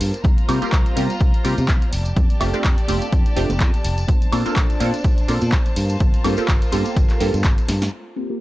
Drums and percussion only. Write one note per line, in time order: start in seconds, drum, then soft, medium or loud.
0.01 open hi-hat loud
0.14 closed hi-hat soft
0.14 tambourine medium
0.24 kick loud
0.24 closed hi-hat medium
0.24 tambourine medium
0.24 high conga medium
0.24 low conga medium
0.38 closed hi-hat soft
0.38 tambourine soft
0.49 open hi-hat loud
0.49 high woodblock medium
0.62 closed hi-hat soft
0.62 tambourine medium
0.72 kick loud
0.72 clap loud
0.72 closed hi-hat medium
0.72 high woodblock medium
0.86 closed hi-hat soft
0.86 tambourine soft
0.96 open hi-hat loud
0.96 high conga medium
1.10 closed hi-hat soft
1.10 tambourine medium
1.20 kick loud
1.20 closed hi-hat medium
1.20 tambourine medium
1.34 closed hi-hat soft
1.34 tambourine soft
1.45 open hi-hat loud
1.58 closed hi-hat soft
1.58 tambourine medium
1.58 high conga loud
1.68 kick loud
1.68 clap loud
1.68 closed hi-hat medium
1.82 closed hi-hat soft
1.82 tambourine soft
1.93 open hi-hat loud
2.05 closed hi-hat soft
2.05 tambourine medium
2.17 kick loud
2.17 closed hi-hat medium
2.17 tambourine medium
2.17 high conga medium
2.17 low conga medium
2.30 closed hi-hat soft
2.30 tambourine soft
2.41 open hi-hat loud
2.41 high woodblock medium
2.53 closed hi-hat soft
2.53 tambourine medium
2.64 kick loud
2.64 clap loud
2.64 closed hi-hat medium
2.64 tambourine medium
2.64 high woodblock medium
2.78 closed hi-hat soft
2.78 tambourine soft
2.88 open hi-hat loud
2.88 high conga medium
3.02 closed hi-hat soft
3.02 tambourine medium
3.13 kick loud
3.13 closed hi-hat medium
3.13 tambourine medium
3.26 closed hi-hat soft
3.26 tambourine soft
3.37 open hi-hat loud
3.50 closed hi-hat soft
3.50 tambourine medium
3.50 high conga loud
3.60 kick loud
3.60 clap loud
3.60 closed hi-hat medium
3.60 tambourine medium
3.74 closed hi-hat soft
3.74 tambourine soft
3.85 open hi-hat loud
3.98 closed hi-hat soft
3.98 tambourine medium
4.08 kick loud
4.08 closed hi-hat medium
4.08 tambourine medium
4.08 high conga medium
4.08 low conga medium
4.22 closed hi-hat soft
4.22 tambourine soft
4.33 open hi-hat loud
4.33 high woodblock medium
4.46 closed hi-hat soft
4.46 tambourine medium
4.56 kick loud
4.56 clap loud
4.56 closed hi-hat medium
4.56 high woodblock medium
4.70 closed hi-hat soft
4.70 tambourine soft
4.81 open hi-hat loud
4.81 high conga medium
4.94 closed hi-hat soft
4.94 tambourine medium
5.04 kick loud
5.04 closed hi-hat medium
5.04 tambourine medium
5.18 closed hi-hat soft
5.18 tambourine soft
5.28 open hi-hat loud
5.41 closed hi-hat soft
5.41 tambourine medium
5.41 high conga medium
5.52 kick loud
5.52 clap loud
5.52 closed hi-hat medium
5.52 tambourine medium
5.66 closed hi-hat soft
5.66 tambourine soft
5.76 open hi-hat loud
5.89 closed hi-hat soft
5.89 tambourine medium
6.00 kick loud
6.00 closed hi-hat medium
6.00 tambourine medium
6.00 high conga medium
6.00 low conga medium
6.14 closed hi-hat soft
6.14 tambourine soft
6.24 open hi-hat loud
6.24 high woodblock medium
6.37 closed hi-hat soft
6.37 tambourine medium
6.48 kick loud
6.48 clap loud
6.48 closed hi-hat medium
6.48 tambourine medium
6.48 high woodblock medium
6.62 closed hi-hat soft
6.62 tambourine soft
6.72 open hi-hat loud
6.72 high conga medium
6.85 closed hi-hat soft
6.85 tambourine medium
6.96 kick loud
6.96 closed hi-hat medium
6.96 tambourine medium
7.09 clap soft
7.09 closed hi-hat soft
7.09 tambourine soft
7.21 open hi-hat loud
7.34 closed hi-hat soft
7.34 tambourine medium
7.34 high conga medium
7.43 kick loud
7.43 clap loud
7.43 closed hi-hat medium
7.43 tambourine medium
7.58 closed hi-hat soft
7.58 tambourine soft
7.69 snare medium
7.69 open hi-hat loud
7.82 snare medium
7.82 closed hi-hat soft
7.82 tambourine medium
7.93 crash medium
8.06 closed hi-hat soft
8.17 closed hi-hat medium
8.30 closed hi-hat soft